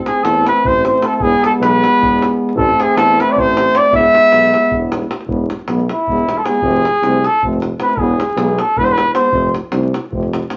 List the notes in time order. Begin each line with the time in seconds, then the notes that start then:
Already playing: A3 C4
0.06 G#4, davul high
0.24 E2 A4, davul high
0.35 davul high
0.44 B4, davul high
0.64 A1 C5, davul low
0.84 C5, davul high
1.02 A4, davul high
1.13 A4, davul high
1.20 E1 G#3 B3 G#4, davul low
1.33 davul high
1.41 A4, davul high
1.46 A4
1.60 B1 B4, davul high
1.73 davul high
1.84 davul high
1.99 E1, davul low
2.22 davul high
2.49 davul high
2.55 A1 A3 C4 A4, davul low
2.69 davul high
2.79 G#4, davul high
2.96 E2 A4, davul high
3.09 davul high
3.19 B4, davul high
3.29 D5
3.35 A1 C5, davul low
3.40 C5
3.57 davul high
3.75 D5, davul high
3.83 davul high
3.91 E1 G#3 B3 E5, davul low
3.96 E5
4.04 davul high
4.15 davul high
4.23 davul high
4.32 B1, davul high
4.44 davul high
4.54 davul high
4.64 davul high
4.71 E1, davul low
4.92 davul high
5.02 davul high
5.11 davul high
5.21 davul high
5.27 E1 G#3 B3, davul low
5.50 davul high
5.59 davul high
5.68 B1 G#3 B3, davul high
5.79 davul high
5.89 E4, davul high
6.07 E1 G#3 B3, davul low
6.18 davul high
6.29 davul high
6.38 A4
6.44 G#3 B3 G#4, davul high
6.54 davul high
6.62 F1 A3 C4, davul low
6.85 davul high
6.95 davul high
7.03 C2 A3 C4, davul high
7.24 A4, davul high
7.42 F1 A3 C4, davul low
7.53 davul high
7.62 davul high
7.80 A3 C4 B4, davul high
7.89 davul high
7.97 E1 G#3 B3 G#4, davul low
8.20 davul high
8.30 davul high
8.36 B1 G#3 B3, davul high
8.48 davul high
8.59 A4, davul high
8.77 E1 G#3 B3 B4, davul low
8.84 C5, davul high
8.92 B4
8.98 davul high
9.14 G#3 B3 C5, davul high
9.24 davul high
9.32 F1 A3 C4, davul low
9.55 davul high
9.71 C2 A3 C4, davul high
9.83 davul high
9.94 davul high
10.11 F1 A3 C4, davul low
10.23 davul high
10.33 davul high
10.43 davul high
10.49 A3 C4, davul high